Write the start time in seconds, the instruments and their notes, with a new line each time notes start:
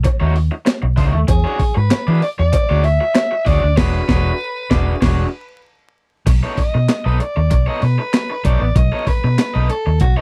0.04 muted overdriven electric guitar stroke, kick, closed hi-hat, cowbell
0.20 fingered electric bass D#2, overdriven electric guitar A3 D#4 F#4 C#5
0.35 muted overdriven electric guitar stroke, open hi-hat
0.51 muted overdriven electric guitar stroke
0.65 muted overdriven electric guitar stroke, snare, clap, closed hi-hat, cowbell
0.82 fingered electric bass B1, muted overdriven electric guitar stroke
0.96 fingered electric bass C#2, overdriven electric guitar A3 D#4 F#4 C#5, kick, open hi-hat
1.13 fingered electric bass D#2, muted overdriven electric guitar stroke
1.28 fingered electric bass E2, soprano saxophone G#4, muted overdriven electric guitar stroke, kick, closed hi-hat, cowbell
1.44 overdriven electric guitar D4 F#4 G#4 C#5
1.59 muted overdriven electric guitar stroke, kick, open hi-hat
1.75 fingered electric bass G#2, soprano saxophone B4, muted overdriven electric guitar stroke
1.91 muted overdriven electric guitar stroke, muted fingered electric bass stroke, snare, clap, closed hi-hat, cowbell
2.07 fingered electric bass E3, overdriven electric guitar D4 F#4 G#4 D5
2.22 soprano saxophone D5, muted overdriven electric guitar stroke, open hi-hat
2.38 fingered electric bass E2, soprano saxophone D5, muted overdriven electric guitar stroke
2.53 muted overdriven electric guitar stroke, kick, closed hi-hat, cowbell
2.69 fingered electric bass D2, overdriven electric guitar D4 F#4 G#4 C#5
2.84 soprano saxophone E5, muted overdriven electric guitar stroke, open hi-hat
3.01 muted overdriven electric guitar stroke
3.14 muted overdriven electric guitar stroke, snare, clap, closed hi-hat, cowbell
3.31 muted overdriven electric guitar stroke
3.45 fingered electric bass D2, overdriven electric guitar D4 F#4 G#4 C#5, soprano saxophone D5, kick, open hi-hat
3.62 fingered electric bass D2, muted overdriven electric guitar stroke
3.77 fingered electric bass E1, overdriven electric guitar D4 F#4 G#4 C#5, soprano saxophone B4, kick, snare, crash
4.08 fingered electric bass E1, overdriven electric guitar D4 F#4 G#4 C#5, kick, snare
4.70 fingered electric bass E1, overdriven electric guitar D4 F#4 G#4 D5, kick, snare
5.01 fingered electric bass E1, overdriven electric guitar D4 F#4 G#4 C#5, kick, snare, crash
6.26 fingered electric bass B1, muted overdriven electric guitar stroke, kick, closed hi-hat, crash
6.43 overdriven electric guitar B3 D#4 A4 C#5
6.57 soprano saxophone D#5, muted fingered electric bass stroke, muted overdriven electric guitar stroke, kick, open hi-hat
6.74 fingered electric bass B2, muted overdriven electric guitar stroke
6.89 muted overdriven electric guitar stroke, snare, clap, closed hi-hat
7.05 fingered electric bass B1, overdriven electric guitar B3 D#4 A4 D#5, soprano saxophone B4
7.20 soprano saxophone D5, muted overdriven electric guitar stroke, closed hi-hat
7.36 fingered electric bass D#2, muted overdriven electric guitar stroke
7.50 fingered electric bass B1, muted overdriven electric guitar stroke, kick, closed hi-hat
7.66 overdriven electric guitar B3 D#4 A4 C#5, soprano saxophone D#5
7.82 fingered electric bass B2, soprano saxophone B4, muted overdriven electric guitar stroke, open hi-hat
7.98 muted overdriven electric guitar stroke
8.13 muted overdriven electric guitar stroke, snare, clap, closed hi-hat
8.30 muted overdriven electric guitar stroke
8.44 fingered electric bass B1, overdriven electric guitar B3 D#4 A4 C#5, soprano saxophone D5, kick, closed hi-hat
8.61 fingered electric bass A1, muted overdriven electric guitar stroke
8.76 fingered electric bass B1, soprano saxophone D#5, muted overdriven electric guitar stroke, kick, closed hi-hat
8.92 overdriven electric guitar B3 D#4 A4 C#5
9.07 soprano saxophone B4, muted overdriven electric guitar stroke, muted fingered electric bass stroke, kick, open hi-hat
9.24 fingered electric bass B2, muted overdriven electric guitar stroke
9.38 muted overdriven electric guitar stroke, snare, clap, closed hi-hat
9.54 fingered electric bass B1, overdriven electric guitar B3 D#4 A4 D#5
9.69 soprano saxophone A4, muted overdriven electric guitar stroke, closed hi-hat
9.86 fingered electric bass D#2, muted overdriven electric guitar stroke
10.00 fingered electric bass B1, soprano saxophone F#4, muted overdriven electric guitar stroke, kick, closed hi-hat
10.17 soprano saxophone D#4, overdriven electric guitar D#4 A4 C#5